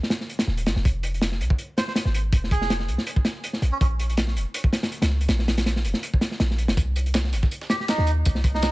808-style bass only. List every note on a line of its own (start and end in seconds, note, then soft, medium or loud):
0.47 0.68 D#1 medium
0.66 0.75 G#1 medium
0.76 0.84 F1 medium
0.85 1.42 F1 loud
1.40 1.49 C2 loud
2.05 2.31 G#1 loud
2.33 2.90 F1 loud
2.88 2.97 C2 loud
3.62 3.71 A#1 loud
3.81 4.37 A#1 loud
4.36 4.45 F1 loud
5.02 5.28 C#2 loud
5.29 5.86 A#1 loud
5.84 5.93 F1 loud
6.40 6.70 A#1 loud
6.68 6.76 F1 loud
6.77 7.34 C2 loud
7.33 7.42 G1 loud
7.98 8.24 D#2 loud
8.26 8.72 C2 loud